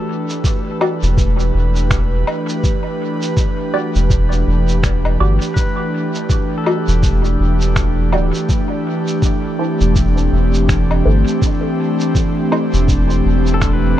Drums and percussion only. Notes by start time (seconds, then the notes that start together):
0.30 shaker
0.44 kick, shaker
0.81 low woodblock
1.03 shaker
1.17 kick, shaker
1.39 shaker
1.76 shaker
1.91 finger snap, kick, shaker
2.27 low woodblock
2.49 shaker
2.64 kick, shaker
3.22 shaker
3.37 kick, shaker
3.95 shaker
4.10 kick, shaker
4.32 shaker
4.69 shaker
4.83 finger snap, kick, shaker
5.05 low woodblock
5.42 shaker
5.56 kick, shaker
6.15 shaker
6.30 kick, shaker
6.66 low woodblock
6.88 shaker
7.03 kick, shaker
7.25 shaker
7.61 shaker
7.76 finger snap, kick, shaker
8.12 low woodblock
8.34 shaker
8.49 kick, shaker
9.07 shaker
9.22 kick, shaker
9.81 shaker
9.96 kick, shaker
10.17 shaker
10.54 shaker
10.69 finger snap, kick, shaker
10.91 low woodblock
11.27 shaker
11.42 kick, shaker
12.00 shaker
12.15 kick, shaker
12.52 low woodblock
12.74 shaker
12.88 kick, shaker
13.10 shaker
13.47 shaker
13.61 finger snap, kick, shaker